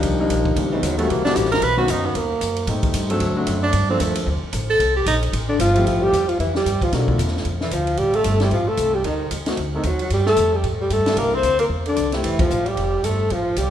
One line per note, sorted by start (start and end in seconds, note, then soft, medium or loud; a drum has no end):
0.00 0.29 C2 medium
0.00 0.17 F3 medium
0.00 0.17 G3 medium
0.00 0.17 A#3 medium
0.00 0.18 D4 medium
0.00 0.18 D#4 medium
0.00 kick soft
0.00 ride medium
0.20 0.55 F3 medium
0.20 0.55 G3 medium
0.20 0.55 A#3 medium
0.20 0.55 D4 medium
0.20 0.55 D#4 medium
0.29 0.55 A#1 medium
0.29 kick soft
0.29 hi-hat pedal soft
0.29 ride medium
0.45 kick medium
0.56 0.82 C#2 medium
0.56 0.71 D#3 medium
0.56 0.71 G3 medium
0.56 0.71 A#3 soft
0.56 0.71 C4 medium
0.56 0.72 D4 medium
0.56 kick soft
0.56 ride medium
0.71 0.85 E3 medium
0.71 0.96 E3 medium
0.71 0.96 G#3 medium
0.71 0.96 B3 medium
0.71 0.96 C#4 medium
0.71 0.96 D#4 medium
0.83 1.08 D#2 medium
0.83 0.97 F#3 medium
0.83 kick soft
0.83 hi-hat pedal medium
0.83 ride medium
0.98 1.24 E3 medium
0.98 1.24 G3 medium
0.98 1.11 A3 medium
0.98 1.24 A#3 medium
0.98 1.24 C4 medium
0.98 1.24 F#4 medium
0.98 ride soft
1.09 1.35 C2 medium
1.09 1.24 A#3 medium
1.09 kick soft
1.09 ride medium
1.24 1.60 E3 medium
1.24 1.61 G3 medium
1.24 1.61 A#3 medium
1.24 1.61 C4 medium
1.24 1.38 D4 medium
1.24 1.61 F#4 medium
1.24 snare soft
1.36 1.61 A1 medium
1.36 1.51 G4 medium
1.36 kick soft
1.36 hi-hat pedal medium
1.36 ride medium
1.45 snare soft
1.52 1.64 A#4 loud
1.52 snare soft
1.52 ride medium
1.62 1.88 B1 medium
1.62 1.77 B4 loud
1.62 kick soft
1.62 ride medium
1.77 2.13 D#3 medium
1.77 2.13 A#3 medium
1.77 2.13 B3 medium
1.77 2.13 C#4 medium
1.77 1.92 F#4 medium
1.77 2.13 F#4 medium
1.88 2.14 F#2 medium
1.88 2.07 D#4 medium
1.88 kick soft
1.88 hi-hat pedal medium
1.88 ride medium
2.06 2.18 B3 medium
2.14 2.40 D#2 medium
2.14 2.69 A#3 medium
2.14 kick soft
2.14 ride medium
2.41 2.66 F#2 medium
2.41 kick soft
2.41 hi-hat pedal medium
2.41 ride medium
2.56 ride medium
2.67 2.93 A2 medium
2.67 3.07 G3 medium
2.67 3.07 A3 medium
2.67 3.07 C4 medium
2.67 3.07 D#4 medium
2.67 3.07 G4 medium
2.67 kick soft
2.67 ride medium
2.83 kick medium
2.83 ride medium
2.93 3.20 G2 medium
2.93 kick soft
2.93 hi-hat pedal medium
2.93 ride medium
3.10 3.35 F#3 medium
3.10 3.35 A3 medium
3.10 3.35 C4 medium
3.10 3.35 D4 medium
3.10 3.35 A4 medium
3.10 ride soft
3.20 3.46 D2 medium
3.20 kick soft
3.20 ride medium
3.36 3.72 F#3 medium
3.36 3.71 A3 medium
3.36 3.72 C4 medium
3.36 3.72 D4 medium
3.36 3.72 F#4 medium
3.47 3.73 F#2 loud
3.47 kick soft
3.47 hi-hat pedal soft
3.47 ride medium
3.63 3.88 D4 medium
3.73 3.99 G2 medium
3.73 kick soft
3.73 ride medium
3.89 4.24 F3 medium
3.89 4.25 A#3 medium
3.89 4.25 C4 medium
3.89 4.03 C4 medium
3.89 4.25 D4 medium
3.89 4.25 A4 medium
4.00 4.26 D#2 loud
4.00 4.16 A3 medium
4.00 kick soft
4.00 hi-hat pedal medium
4.00 ride medium
4.15 ride medium
4.26 4.41 D2 medium
4.26 kick soft
4.43 muted upright bass stroke soft
4.53 4.79 A1 medium
4.53 kick soft
4.53 hi-hat pedal medium
4.53 ride medium
4.70 4.94 A4 loud
4.79 5.05 C2 medium
4.79 kick soft
4.79 ride medium
4.96 5.06 G4 medium
5.06 5.32 A#1 medium
5.06 5.16 D#4 medium
5.06 kick soft
5.06 hi-hat pedal medium
5.06 ride medium
5.23 ride soft
5.33 5.58 A1 medium
5.33 kick soft
5.33 ride medium
5.48 5.58 D3 medium
5.48 5.59 D4 medium
5.59 5.85 G1 medium
5.59 5.83 F3 medium
5.59 5.85 F4 loud
5.59 kick soft
5.59 hi-hat pedal medium
5.59 ride medium
5.75 6.10 F3 medium
5.75 6.10 A3 medium
5.75 6.10 C4 medium
5.75 6.10 E4 medium
5.75 6.10 G4 medium
5.75 ride medium
5.84 6.12 A1 medium
5.84 6.03 F3 medium
5.84 6.04 F4 medium
5.84 kick soft
5.84 ride medium
6.01 6.29 G3 medium
6.01 6.30 G4 loud
6.12 6.38 E2 medium
6.12 kick soft
6.12 hi-hat pedal medium
6.12 ride medium
6.28 6.39 F3 medium
6.28 6.39 F4 medium
6.28 ride soft
6.39 6.65 F2 medium
6.39 6.54 E3 medium
6.39 6.54 E4 medium
6.39 kick soft
6.39 ride soft
6.55 6.84 G3 medium
6.55 6.85 G4 medium
6.55 snare soft
6.66 6.91 G2 medium
6.66 kick soft
6.66 hi-hat pedal soft
6.66 ride medium
6.82 6.96 F3 medium
6.82 6.96 F4 medium
6.82 kick soft
6.82 ride soft
6.92 7.17 B2 medium
6.92 7.20 D3 medium
6.92 7.07 A#3 medium
6.92 7.07 C4 soft
6.92 7.20 D4 medium
6.92 7.07 D#4 soft
6.92 7.07 F#4 medium
6.92 kick soft
6.92 snare soft
6.92 ride medium
7.08 7.45 A3 medium
7.08 7.45 B3 medium
7.08 7.46 D4 soft
7.08 7.45 F4 medium
7.08 kick medium
7.18 7.44 E2 medium
7.18 kick soft
7.18 hi-hat pedal medium
7.18 ride medium
7.28 snare soft
7.37 snare soft
7.45 7.71 F2 medium
7.45 kick soft
7.45 ride soft
7.61 7.75 E3 medium
7.61 7.75 E4 medium
7.61 snare soft
7.71 7.97 D2 medium
7.71 8.01 F3 medium
7.71 8.00 F4 medium
7.71 kick soft
7.71 hi-hat pedal medium
7.71 ride medium
7.87 ride soft
7.97 8.24 A1 medium
7.97 8.17 G3 medium
7.97 8.17 G4 loud
7.97 kick soft
7.97 ride medium
8.13 8.40 A3 medium
8.13 8.41 A4 medium
8.13 ride soft
8.24 8.50 G1 medium
8.24 kick soft
8.24 hi-hat pedal soft
8.24 ride medium
8.40 8.51 G3 medium
8.40 8.50 A3 medium
8.40 8.50 C4 medium
8.40 8.50 E4 medium
8.40 8.50 G4 medium
8.40 snare soft
8.40 ride soft
8.44 8.52 G4 medium
8.51 8.77 A1 medium
8.51 8.70 F3 medium
8.51 8.70 F4 medium
8.51 kick soft
8.51 ride soft
8.68 8.96 A3 medium
8.68 8.96 A4 loud
8.77 9.03 C2 medium
8.77 kick soft
8.77 hi-hat pedal medium
8.77 ride medium
8.95 9.04 G3 medium
8.95 9.05 G4 medium
9.04 9.30 D2 medium
9.04 9.29 D#3 medium
9.04 9.30 D#4 medium
9.04 kick soft
9.04 ride medium
9.31 9.57 D#2 medium
9.31 kick soft
9.31 hi-hat pedal medium
9.31 ride medium
9.46 9.57 A3 medium
9.46 9.57 C4 medium
9.46 9.57 D#4 medium
9.46 9.57 F#4 medium
9.46 snare soft
9.46 ride soft
9.57 9.83 D2 medium
9.57 kick soft
9.57 ride medium
9.75 9.87 D#3 medium
9.75 9.84 A3 medium
9.75 9.84 C4 medium
9.75 9.84 D#4 medium
9.75 9.89 D#4 medium
9.75 9.84 A4 medium
9.83 10.10 D#2 medium
9.83 10.00 F#3 medium
9.83 10.01 F#4 medium
9.83 kick soft
9.83 hi-hat pedal soft
9.83 ride medium
9.99 10.11 F#3 medium
9.99 ride soft
10.04 10.12 F#4 medium
10.10 10.36 G2 medium
10.10 10.26 G3 medium
10.10 10.27 G4 medium
10.10 kick soft
10.10 ride medium
10.26 10.55 A3 medium
10.26 10.58 A4 medium
10.26 snare soft
10.36 10.63 F2 medium
10.36 kick soft
10.36 hi-hat pedal medium
10.36 ride medium
10.54 10.64 G3 medium
10.54 10.66 G4 medium
10.63 10.89 A2 medium
10.63 kick soft
10.63 ride medium
10.81 10.93 G3 medium
10.81 10.95 G4 medium
10.90 11.16 G2 medium
10.90 11.17 A3 medium
10.90 11.18 A4 loud
10.90 kick soft
10.90 hi-hat pedal soft
10.90 ride medium
11.06 11.42 A#3 medium
11.06 11.41 D4 medium
11.06 11.41 E4 medium
11.06 11.42 G4 medium
11.06 snare medium
11.06 ride soft
11.17 11.43 C2 medium
11.17 11.35 A#3 medium
11.17 11.36 A#4 medium
11.17 kick soft
11.17 ride medium
11.34 11.59 C4 medium
11.34 11.60 C5 loud
11.43 11.69 D2 medium
11.43 kick soft
11.43 hi-hat pedal medium
11.43 ride medium
11.59 11.64 A#3 medium
11.59 11.65 A#4 medium
11.59 ride medium
11.69 11.96 E2 medium
11.69 kick soft
11.86 12.11 D3 medium
11.86 12.12 D4 medium
11.86 ride soft
11.96 12.22 C2 medium
11.96 kick soft
11.96 hi-hat pedal medium
11.96 ride medium
12.12 12.48 A3 medium
12.12 12.48 C4 medium
12.12 12.49 E4 medium
12.12 12.49 G4 medium
12.12 snare soft
12.12 ride soft
12.23 12.49 F1 medium
12.23 12.43 E3 medium
12.23 12.41 E4 medium
12.23 kick soft
12.23 ride medium
12.39 12.67 F3 medium
12.39 12.70 F4 medium
12.39 kick medium
12.39 ride medium
12.50 12.76 A1 medium
12.50 hi-hat pedal medium
12.66 13.07 G3 medium
12.66 13.06 G4 medium
12.66 ride soft
12.77 13.03 F1 medium
12.77 kick soft
12.77 ride soft
13.03 13.29 G1 medium
13.03 13.34 A3 medium
13.03 13.34 A4 medium
13.03 kick soft
13.03 hi-hat pedal medium
13.03 ride medium
13.30 13.56 A1 medium
13.30 13.58 F3 medium
13.30 13.57 F4 medium
13.30 kick soft
13.30 ride medium
13.56 13.70 C2 medium
13.56 13.70 G3 medium
13.56 13.70 G4 medium
13.56 kick soft
13.56 hi-hat pedal medium
13.56 ride medium